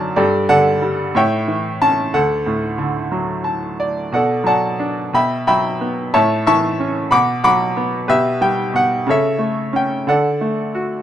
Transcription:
0.00 0.14 F#2 medium
0.00 0.14 D3 soft
0.00 0.16 F#3 medium
0.00 0.16 D5 medium
0.00 0.15 A5 medium
0.16 1.12 G2 medium
0.16 1.11 G4 medium
0.16 0.47 A4 medium
0.16 0.48 D5 medium
0.49 1.13 D3 medium
0.49 1.11 A4 medium
0.49 1.11 D5 medium
0.49 1.11 F#5 medium
0.82 1.14 G3 medium
1.15 2.10 A2 medium
1.15 2.10 C#5 medium
1.15 2.10 E5 medium
1.15 1.83 G5 medium
1.48 2.11 E3 soft
1.82 2.13 C#4 medium
1.82 2.15 A5 medium
2.14 4.09 D2 medium
2.14 3.09 A4 medium
2.14 2.84 F#5 medium
2.46 3.75 A2 medium
2.78 4.08 D3 medium
3.12 4.10 F#3 soft
3.44 3.76 A5 medium
3.80 4.11 D5 medium
4.12 5.11 B2 medium
4.12 5.11 A4 soft
4.12 4.45 D5 soft
4.12 4.46 F#5 medium
4.44 5.11 F#3 soft
4.44 5.10 D5 soft
4.44 5.10 A5 medium
4.48 5.11 F#5 medium
4.79 5.13 D4 soft
5.13 6.11 B2 medium
5.13 5.46 E5 medium
5.13 5.46 G5 medium
5.13 5.46 B5 medium
5.47 6.13 F#3 soft
5.47 6.10 E5 medium
5.47 6.10 G5 medium
5.47 6.16 B5 medium
5.81 6.13 B3 medium
6.14 7.09 A2 medium
6.14 7.07 C#5 medium
6.14 6.45 E5 medium
6.14 6.45 A5 medium
6.47 7.10 E3 medium
6.47 7.07 E5 medium
6.47 7.08 A5 medium
6.47 7.08 C#6 medium
6.80 7.11 C#4 medium
7.11 8.05 B2 medium
7.11 7.42 F#5 medium
7.11 7.43 B5 medium
7.11 7.43 D6 medium
7.44 8.07 F#3 medium
7.44 8.05 F#5 medium
7.44 8.05 B5 medium
7.44 8.11 D6 loud
7.77 8.08 B3 medium
8.08 8.72 B2 medium
8.08 9.03 G4 medium
8.08 9.03 B4 medium
8.08 8.43 E5 medium
8.41 9.05 G3 medium
8.41 8.75 G5 medium
8.74 9.06 B2 medium
8.74 9.09 F#5 medium
9.07 10.04 C#3 medium
9.07 10.04 A4 medium
9.07 10.05 C#5 medium
9.07 9.77 E5 medium
9.39 10.05 A3 soft
9.73 10.06 C#4 medium
9.73 10.06 G5 medium
10.07 11.02 D3 medium
10.07 11.02 A4 soft
10.07 11.02 D5 soft
10.07 11.02 F#5 medium
10.41 11.02 A3 soft
10.75 11.02 F#4 soft

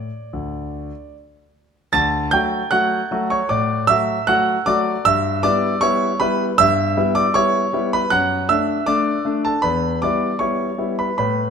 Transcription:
0.00 1.12 D5 medium
0.33 0.89 D2 soft
1.93 2.31 D2 medium
1.93 2.30 A5 medium
1.93 2.32 A6 loud
2.31 2.61 F#3 medium
2.31 2.61 A3 medium
2.31 2.62 F#4 medium
2.31 2.69 G5 medium
2.31 2.71 G6 loud
2.71 3.00 F#3 medium
2.71 3.00 A3 medium
2.71 3.00 F#4 medium
2.71 3.26 F#5 medium
2.71 3.26 F#6 loud
3.11 3.39 F#3 medium
3.11 3.40 A3 medium
3.11 3.40 F#4 medium
3.30 3.49 C#5 medium
3.30 3.50 C#6 medium
3.49 3.88 A2 medium
3.49 3.87 D5 medium
3.49 3.89 D6 medium
3.87 4.17 F#3 medium
3.87 4.17 A3 medium
3.87 4.17 F#4 medium
3.87 4.25 E5 medium
3.87 4.23 E6 loud
4.27 4.56 F#3 medium
4.27 4.56 A3 medium
4.27 4.56 F#4 medium
4.27 4.64 F#5 medium
4.27 4.62 F#6 loud
4.66 4.95 F#3 medium
4.66 4.95 A3 medium
4.66 4.96 F#4 medium
4.66 5.03 D5 medium
4.66 4.90 D6 loud
5.05 5.44 G2 medium
5.05 5.42 E5 medium
5.05 5.40 E6 loud
5.43 5.72 G3 medium
5.43 5.72 B3 medium
5.43 5.73 E4 medium
5.43 5.80 D5 medium
5.43 5.79 D6 loud
5.81 6.10 G3 medium
5.81 6.10 B3 medium
5.81 6.10 E4 medium
5.81 6.19 C#5 medium
5.81 6.16 C#6 loud
6.20 6.48 G3 medium
6.20 6.49 B3 medium
6.20 6.49 E4 medium
6.20 6.57 B4 medium
6.20 6.43 B5 loud
6.58 6.97 G2 medium
6.58 7.13 E5 medium
6.58 7.16 E6 loud
6.97 7.25 G3 medium
6.97 7.25 B3 medium
6.97 7.25 E4 medium
7.15 7.34 D5 medium
7.15 7.35 D6 loud
7.34 7.63 G3 medium
7.34 7.63 B3 medium
7.34 7.64 E4 medium
7.34 7.89 C#5 medium
7.34 7.92 C#6 loud
7.73 8.01 G3 medium
7.73 8.01 B3 medium
7.73 8.01 E4 medium
7.93 8.11 B4 medium
7.93 8.12 B5 loud
8.10 8.48 F#2 medium
8.10 8.47 F#5 medium
8.10 8.33 F#6 loud
8.49 8.77 A3 medium
8.49 8.77 D4 medium
8.49 8.85 E5 medium
8.49 8.87 E6 loud
8.86 9.15 A3 medium
8.86 9.15 D4 medium
8.86 9.41 D5 medium
8.86 9.40 D6 loud
9.25 9.53 A3 medium
9.25 9.53 D4 medium
9.45 9.63 A4 medium
9.45 9.64 A5 medium
9.62 10.01 E2 medium
9.62 9.99 B4 medium
9.62 9.97 B5 medium
10.02 10.30 G3 medium
10.02 10.30 B3 medium
10.02 10.31 E4 medium
10.02 10.38 D5 medium
10.02 10.36 D6 medium
10.39 10.68 G3 medium
10.39 10.68 B3 soft
10.39 10.69 E4 soft
10.39 10.95 C#5 medium
10.39 10.94 C#6 medium
10.78 11.07 G3 soft
10.78 11.07 B3 soft
10.78 11.07 E4 soft
10.99 11.18 B4 medium
10.99 11.16 B5 medium
11.18 11.50 A2 medium
11.18 11.50 B4 medium
11.18 11.50 B5 medium

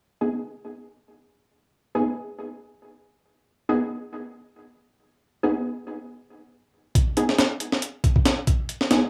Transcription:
0.21 0.30 B3 medium
0.21 0.30 D#4 medium
0.21 0.30 G#4 medium
1.95 2.04 B3 medium
1.95 2.04 D#4 medium
1.95 2.04 G#4 medium
3.69 3.78 B3 medium
3.69 3.78 D#4 medium
3.69 3.78 G#4 medium
5.43 5.52 B3 medium
5.43 5.52 D#4 medium
5.43 5.52 G#4 medium
6.95 kick loud
6.95 closed hi-hat medium
7.17 7.26 B3 medium
7.17 7.26 D#4 medium
7.17 7.26 G#4 medium
7.17 closed hi-hat medium
7.29 snare soft
7.39 snare loud
7.39 closed hi-hat medium
7.60 closed hi-hat medium
7.72 snare soft
7.82 closed hi-hat medium
8.04 kick medium
8.04 closed hi-hat medium
8.16 kick medium
8.25 snare loud
8.25 closed hi-hat medium
8.47 kick medium
8.47 closed hi-hat medium
8.69 closed hi-hat medium
8.81 snare soft
8.91 8.99 B3 medium
8.91 8.99 D#4 medium
8.91 8.99 G#4 medium
8.91 snare loud
8.91 closed hi-hat medium

